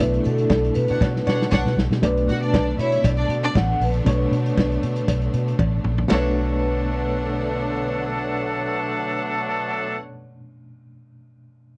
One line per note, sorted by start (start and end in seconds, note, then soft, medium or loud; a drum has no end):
0.00 0.18 B1 loud
0.00 1.98 B2 medium
0.00 1.99 D3 medium
0.00 1.98 A3 medium
0.00 1.99 A3 medium
0.00 1.99 B3 medium
0.00 1.99 D4 medium
0.00 1.99 E4 medium
0.00 0.26 B4 medium
0.14 closed hi-hat soft
0.24 0.44 B2 loud
0.24 0.77 A4 loud
0.24 closed hi-hat medium
0.38 closed hi-hat soft
0.50 0.69 B1 loud
0.50 kick loud
0.50 snare loud
0.50 cowbell medium
0.64 closed hi-hat soft
0.74 0.86 B2 loud
0.74 1.73 B4 medium
0.74 closed hi-hat medium
0.88 0.99 B2 medium
0.88 1.00 D4 medium
0.88 1.00 C#5 medium
0.88 0.99 F#5 medium
0.88 closed hi-hat medium
1.01 1.20 B2 loud
1.01 kick loud
1.01 snare medium
1.01 cowbell medium
1.16 snare medium
1.27 1.45 B2 medium
1.27 1.38 D4 medium
1.27 1.38 C#5 medium
1.27 1.38 F#5 medium
1.27 snare medium
1.27 cowbell medium
1.42 snare medium
1.51 1.62 B1 loud
1.51 1.73 D4 medium
1.51 1.73 C#5 medium
1.51 1.73 F#5 loud
1.51 kick loud
1.51 snare loud
1.51 cowbell medium
1.66 1.74 B2 medium
1.66 snare medium
1.77 1.87 B1 medium
1.77 snare loud
1.91 1.99 B2 medium
1.91 snare medium
2.02 2.29 B1 loud
2.02 4.02 B2 medium
2.02 6.07 D3 medium
2.02 4.02 A3 medium
2.02 6.07 A3 medium
2.02 6.07 B3 medium
2.02 4.03 D4 medium
2.02 6.07 D4 medium
2.02 2.82 B4 medium
2.02 4.03 D5 medium
2.02 kick loud
2.02 closed hi-hat medium
2.02 cowbell medium
2.17 closed hi-hat soft
2.28 2.55 B2 loud
2.28 2.39 F#4 medium
2.28 2.39 F#5 medium
2.28 closed hi-hat medium
2.43 2.77 D4 medium
2.43 2.78 D5 medium
2.43 closed hi-hat soft
2.54 2.72 B1 loud
2.54 kick loud
2.54 snare loud
2.54 cowbell medium
2.79 2.97 B2 medium
2.79 3.00 E4 medium
2.79 2.92 C#5 loud
2.79 2.99 E5 medium
2.79 closed hi-hat medium
2.92 snare soft
2.92 closed hi-hat medium
3.04 3.23 B1 loud
3.04 3.58 D5 medium
3.04 kick loud
3.04 closed hi-hat medium
3.04 cowbell medium
3.17 3.27 D4 medium
3.17 3.27 D5 loud
3.17 closed hi-hat soft
3.29 3.48 B2 medium
3.29 closed hi-hat medium
3.44 3.53 D4 medium
3.44 3.53 D5 loud
3.44 closed hi-hat medium
3.55 3.74 A1 loud
3.55 3.82 F#5 loud
3.55 kick loud
3.55 snare loud
3.55 cowbell medium
3.80 3.99 A#1 medium
3.80 5.56 B4 medium
3.80 open hi-hat medium
3.94 closed hi-hat soft
4.05 4.25 B1 loud
4.05 6.05 B2 medium
4.05 6.06 A3 medium
4.05 6.07 D4 medium
4.05 6.07 C#5 medium
4.05 kick loud
4.05 closed hi-hat medium
4.05 cowbell medium
4.32 4.50 B2 loud
4.32 closed hi-hat medium
4.46 closed hi-hat medium
4.57 4.76 B1 loud
4.57 kick loud
4.57 snare loud
4.57 cowbell medium
4.72 closed hi-hat soft
4.83 5.02 B2 medium
4.83 closed hi-hat medium
4.96 closed hi-hat medium
5.08 5.27 B1 medium
5.08 kick loud
5.08 closed hi-hat medium
5.08 cowbell medium
5.21 closed hi-hat soft
5.34 5.52 B2 loud
5.34 closed hi-hat medium
5.48 closed hi-hat soft
5.59 5.78 A1 loud
5.59 kick loud
5.59 high tom medium
5.59 cowbell medium
5.84 6.03 A#1 medium
5.84 mid tom medium
5.98 floor tom medium
6.08 9.96 B1 loud
6.08 9.94 B2 medium
6.08 9.97 D3 medium
6.08 9.95 F#3 medium
6.08 9.95 A3 medium
6.08 9.96 A3 medium
6.08 9.97 A3 medium
6.08 9.97 B3 medium
6.08 9.94 D4 medium
6.08 9.96 D4 medium
6.08 9.97 D4 medium
6.08 9.95 A4 medium
6.08 9.97 B4 medium
6.08 9.96 C#5 medium
6.08 9.96 F#5 loud
6.08 snare loud
6.08 ride bell medium
6.08 cowbell medium
6.14 10.00 C#5 loud